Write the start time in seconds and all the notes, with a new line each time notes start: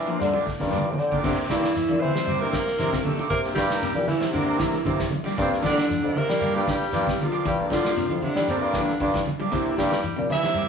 Already playing: E3
0.07 F3 A#3 D4 F4 C5, muted clean electric guitar stroke, closed hi-hat
0.20 D3 G3, muted clean electric guitar stroke, closed hi-hat, high conga, shekere
0.33 F3 A#3 D4 G4, high conga
0.46 A3, muted clean electric guitar stroke, kick, snare, closed hi-hat, shekere
0.60 G2 A#3 D4 F4 A4, kick, snare, closed hi-hat, high conga
0.67 F3 G3, high conga
0.72 A#3 D4 G4 D5, closed hi-hat, shekere
0.77 low conga
0.86 E3, muted clean electric guitar stroke
0.93 low conga
0.98 D3 G5, muted clean electric guitar stroke, closed hi-hat, shekere
1.11 D3 A#3 D4 F4 G4 A4, kick, closed hi-hat, low conga
1.22 C3 D3 E3 A#3 C4 D4 G4, kick, crash, low conga, shekere
1.26 E4 G4, high conga
1.38 muted clean electric guitar stroke, closed hi-hat
1.49 G2 D3 E3 A#3 C4 E4 G4, kick, snare, closed hi-hat, high conga, shekere
1.63 muted clean electric guitar stroke, snare, closed hi-hat
1.75 E3, snare, closed hi-hat, shekere
1.89 A#2 E3, muted clean electric guitar stroke, closed hi-hat, high conga
2.00 E3 C4 C5, muted clean electric guitar stroke, open hi-hat, shekere
2.05 low conga
2.14 C3 E3, muted clean electric guitar stroke, snare
2.26 E3 G3 A#3 C4 G4, closed hi-hat, high conga, low conga, shekere
2.38 C3 A#3 C4 D4 E4 A#4
2.42 E3 A#3 G4
2.52 D3 A#3 A#4, muted clean electric guitar stroke, kick, snare, closed hi-hat, shekere
2.67 snare
2.78 C3 E3 A#3 C4 D4 E4 G4 A#4, snare, closed hi-hat, high conga, low conga, shekere
2.92 C3, muted clean electric guitar stroke, kick, snare, closed hi-hat
3.03 A3 A#3 D4 E4 G4 A4, muted clean electric guitar stroke, closed hi-hat, high conga, low conga, shekere
3.17 D3 A#3 C4 G4, closed hi-hat, high conga
3.29 C3 A#3 A#4, muted clean electric guitar stroke, kick, closed hi-hat, high conga, shekere
3.44 A#3 D4 E4 G4, muted clean electric guitar stroke, snare, closed hi-hat
3.55 G2 D3 E3 G3 A#3 C4 G4, kick, snare, closed hi-hat, high conga, shekere
3.69 A#3 D4 E4, muted clean electric guitar stroke, snare, closed hi-hat
3.74 A#4
3.81 C3, snare, closed hi-hat, shekere
3.94 A#2 E3, muted clean electric guitar stroke, closed hi-hat, high conga
4.07 E3 E4, muted clean electric guitar stroke, snare, open hi-hat, high conga, low conga, shekere
4.20 C3 E3, muted clean electric guitar stroke, snare
4.24 E4 G4
4.31 D3 E3 A#3 C4 D4 G4, closed hi-hat, high conga, low conga, shekere
4.35 A#3 D4 E4 A#4
4.45 C3 E3 A#3 C4 G4, closed hi-hat
4.58 E3 E4, muted clean electric guitar stroke, kick, snare, closed hi-hat, shekere
4.73 snare, closed hi-hat
4.85 C3 D3 E3 A#3 C4 G4, kick, closed hi-hat, high conga, low conga, shekere
4.99 E3, muted clean electric guitar stroke, kick, snare, closed hi-hat
5.10 muted clean electric guitar stroke, closed hi-hat, high conga, low conga, shekere
5.24 G3 A#3 C4 G4, snare, closed hi-hat, high conga
5.36 G2 D3 F3 A#3 D4 F4 G4 A4, kick, closed hi-hat, high conga, shekere
5.41 C3 C4
5.50 muted clean electric guitar stroke, snare, closed hi-hat
5.62 D3 E3 F3 A#3 D4 G4, kick, snare, closed hi-hat, high conga, shekere
5.69 D3
5.77 muted clean electric guitar stroke, snare, closed hi-hat
5.89 F3, closed hi-hat, high conga, shekere
6.02 F2 D3, muted clean electric guitar stroke, closed hi-hat, high conga
6.13 C3 A#4, muted clean electric guitar stroke, open hi-hat, low conga, shekere
6.18 A#3
6.28 F3 G3, muted clean electric guitar stroke, snare
6.40 F3 G3 A#3 D4 G4, closed hi-hat, high conga, low conga, shekere
6.54 G2 F3 A#3 D4 F4 G4 A4
6.58 G3
6.67 D3 G3 G4, muted clean electric guitar stroke, kick, snare, closed hi-hat, shekere
6.83 snare
6.92 G2 E3 F3 A#3 D4 F4 G4 A4, closed hi-hat, high conga, shekere
7.07 C3, muted clean electric guitar stroke, kick, snare, closed hi-hat
7.18 F3 A#3 D4 F4 A4, muted clean electric guitar stroke, closed hi-hat, low conga, shekere
7.24 F4
7.32 A#3 D4 G4, closed hi-hat, high conga
7.45 G2 E3 G3 G4, kick, closed hi-hat, high conga, shekere
7.59 A#3 D4 F4 A4, muted clean electric guitar stroke, closed hi-hat
7.70 D3 F3 A#3 D4 F4 G4, kick, snare, closed hi-hat, high conga, shekere
7.85 A#3 D4 F4 G4, muted clean electric guitar stroke, snare, closed hi-hat
7.97 C3, closed hi-hat, high conga, shekere
8.09 F2 E3, muted clean electric guitar stroke, closed hi-hat, high conga
8.22 C3 D3 D4, muted clean electric guitar stroke, open hi-hat, high conga, low conga, shekere
8.36 E3 G3 F4 A4, muted clean electric guitar stroke, snare
8.48 C3 D3 F3 A#3 C4 D4 F4 G4 A4, closed hi-hat, high conga, shekere
8.61 G2 A#3 D4 G4, closed hi-hat
8.65 F3
8.73 D3 E3 D4, muted clean electric guitar stroke, kick, snare, closed hi-hat, shekere
8.88 snare, closed hi-hat
9.00 G2 D3 F3 A#3 D4 G4, kick, closed hi-hat, high conga, shekere
9.14 E3, muted clean electric guitar stroke, kick, snare, closed hi-hat
9.26 muted clean electric guitar stroke, closed hi-hat, high conga, low conga, shekere
9.40 G3 A#3 D4 G4, closed hi-hat, high conga
9.50 C3 E3 A#3 C4 D4 E4 G4, kick, closed hi-hat, shekere
9.66 muted clean electric guitar stroke, closed hi-hat
9.78 G2 D3 E3 G3 A#3 C4 G4, kick, snare, closed hi-hat, high conga, shekere
9.92 muted clean electric guitar stroke, snare, closed hi-hat
10.03 E3, closed hi-hat, high conga, shekere
10.16 A#2 C3, muted clean electric guitar stroke, closed hi-hat, high conga
10.30 E3 E4 E5, muted clean electric guitar stroke, snare, open hi-hat, high conga, low conga, shekere
10.43 C3 E3, muted clean electric guitar stroke, snare
10.54 E3 G3 A#3 C4 G4, closed hi-hat, high conga, shekere